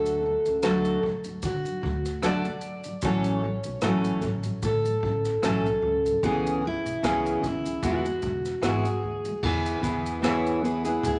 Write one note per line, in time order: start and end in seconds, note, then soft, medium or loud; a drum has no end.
0.00 0.35 D2 medium
0.00 0.22 D3 medium
0.00 0.26 F#3 medium
0.00 0.63 A3 medium
0.00 0.64 F#4 medium
0.00 0.64 A4 medium
0.00 1.02 A4 medium
0.06 shaker medium
0.23 0.56 D3 medium
0.23 0.58 F#3 medium
0.46 0.61 C#2 medium
0.46 shaker soft
0.62 0.97 D2 medium
0.62 1.01 D3 medium
0.62 1.03 F#3 medium
0.62 1.04 A3 medium
0.62 1.04 F#4 medium
0.62 1.04 A4 medium
0.62 cross-stick loud
0.62 shaker medium
0.85 shaker soft
1.02 1.37 D2 medium
1.02 1.24 D3 medium
1.02 1.27 F#3 medium
1.02 kick medium
1.24 1.57 D3 soft
1.24 shaker soft
1.28 1.58 F#3 medium
1.42 1.76 D3 medium
1.42 2.27 F#4 medium
1.42 kick medium
1.42 shaker medium
1.64 1.80 D3 soft
1.64 1.84 F#3 soft
1.64 shaker soft
1.82 2.49 D2 medium
1.82 2.16 D3 soft
1.82 2.17 F#3 medium
1.82 kick medium
2.05 cross-stick soft
2.05 shaker medium
2.22 2.43 D3 medium
2.22 2.45 F#3 medium
2.22 2.46 A3 medium
2.22 2.46 F#4 medium
2.22 2.46 A4 medium
2.22 3.04 D5 loud
2.22 cross-stick loud
2.22 shaker medium
2.44 2.76 D3 soft
2.44 2.78 F#3 soft
2.44 shaker soft
2.61 shaker soft
2.84 3.03 D3 soft
2.84 shaker soft
2.88 3.03 F#3 soft
3.02 3.54 A1 medium
3.02 3.41 A2 medium
3.02 3.43 E3 medium
3.02 3.44 F#3 medium
3.02 3.44 A3 medium
3.02 3.44 C#4 medium
3.02 3.45 A4 medium
3.02 4.64 C#5 loud
3.02 kick loud
3.02 shaker medium
3.24 shaker soft
3.42 3.76 A2 medium
3.42 3.77 E3 medium
3.42 3.77 F#3 medium
3.64 3.80 B1 medium
3.64 shaker medium
3.81 4.16 A1 medium
3.81 4.20 A2 medium
3.81 4.22 E3 medium
3.81 4.24 F#3 medium
3.81 4.24 A3 medium
3.81 4.24 C#4 medium
3.81 4.24 A4 medium
3.81 cross-stick loud
3.81 shaker medium
4.04 shaker soft
4.21 4.56 A1 medium
4.21 4.42 A2 medium
4.21 4.43 E3 medium
4.21 4.44 F#3 medium
4.21 kick medium
4.21 shaker soft
4.43 4.76 A2 soft
4.43 4.77 E3 soft
4.43 4.77 F#3 soft
4.43 shaker soft
4.62 4.96 A2 medium
4.62 5.44 A4 medium
4.62 kick medium
4.62 shaker medium
4.83 4.99 A2 soft
4.83 5.01 E3 soft
4.83 5.03 F#3 soft
4.83 shaker soft
5.00 5.36 A1 medium
5.00 5.35 A2 medium
5.00 5.36 E3 soft
5.00 5.37 F#3 medium
5.00 kick medium
5.25 cross-stick soft
5.25 shaker medium
5.42 5.76 B1 medium
5.42 5.63 A2 medium
5.42 5.65 E3 medium
5.42 5.65 F#3 medium
5.42 5.66 A3 medium
5.42 5.66 C#4 medium
5.42 5.66 A4 medium
5.42 6.25 A4 medium
5.42 cross-stick loud
5.42 shaker medium
5.64 5.96 A2 soft
5.64 5.97 E3 soft
5.64 shaker soft
5.68 5.98 F#3 soft
5.82 6.16 C#2 medium
6.05 6.23 A2 soft
6.05 6.22 E3 soft
6.05 6.23 F#3 soft
6.05 shaker soft
6.23 6.74 C#2 medium
6.23 6.61 C#3 medium
6.23 6.64 E3 medium
6.23 6.64 B3 medium
6.23 6.64 C#4 medium
6.23 6.64 G#4 medium
6.23 6.66 G#4 medium
6.23 kick loud
6.23 shaker medium
6.47 shaker medium
6.62 6.96 C#3 medium
6.62 6.97 E3 medium
6.67 7.45 E4 medium
6.85 7.00 B1 medium
6.85 shaker medium
7.02 7.36 C#2 medium
7.02 7.41 C#3 medium
7.02 7.43 E3 medium
7.02 7.44 B3 medium
7.02 7.44 C#4 medium
7.02 7.44 G#4 medium
7.02 cross-stick loud
7.02 shaker medium
7.26 shaker soft
7.42 7.76 C#2 medium
7.42 7.63 C#3 soft
7.42 7.66 E3 medium
7.42 kick medium
7.42 shaker soft
7.46 7.86 E4 medium
7.64 7.82 C#3 soft
7.64 7.81 E3 medium
7.64 shaker soft
7.82 8.16 E2 medium
7.82 8.04 E3 medium
7.82 8.05 G#3 medium
7.82 8.05 B3 medium
7.82 8.06 E4 medium
7.82 8.06 F#4 medium
7.82 kick medium
7.82 shaker medium
7.87 9.01 F#4 medium
8.05 8.21 E3 soft
8.05 8.24 G#3 soft
8.05 shaker soft
8.22 8.56 E1 medium
8.22 8.56 E3 soft
8.22 8.57 G#3 medium
8.22 kick medium
8.22 shaker soft
8.45 cross-stick soft
8.45 shaker soft
8.61 8.81 G#1 medium
8.61 8.82 E3 medium
8.61 8.85 G#3 medium
8.61 8.86 B3 medium
8.61 8.85 E4 medium
8.61 8.86 F#4 medium
8.61 9.45 G#4 medium
8.61 cross-stick loud
8.61 shaker medium
8.84 9.16 E3 soft
8.84 shaker soft
8.88 9.18 G#3 soft
9.03 9.36 D2 medium
9.25 9.41 E3 soft
9.25 9.42 G#3 soft
9.25 shaker soft
9.43 9.76 E2 medium
9.43 9.80 E3 medium
9.43 9.81 B3 medium
9.43 9.82 E4 medium
9.43 9.83 G#4 medium
9.43 10.25 B4 medium
9.43 kick medium
9.43 crash medium
9.66 shaker soft
9.81 10.99 E2 medium
9.81 10.21 E3 medium
9.81 10.22 B3 medium
9.81 10.23 E4 medium
9.81 10.23 G#4 medium
9.81 kick medium
9.81 shaker soft
10.06 shaker medium
10.22 10.61 E3 medium
10.22 10.62 B3 medium
10.22 10.63 E4 medium
10.22 10.64 G#4 medium
10.22 10.65 C#5 medium
10.22 cross-stick loud
10.22 shaker medium
10.46 shaker soft
10.62 10.84 E3 soft
10.62 10.85 B3 medium
10.62 10.85 E4 medium
10.62 10.84 G#4 medium
10.62 11.05 B4 medium
10.62 shaker soft
10.85 11.19 B3 soft
10.85 11.19 E4 medium
10.85 11.19 G#4 medium
10.85 shaker soft
11.03 11.19 D2 medium
11.03 11.19 G#4 medium
11.03 kick medium
11.03 shaker medium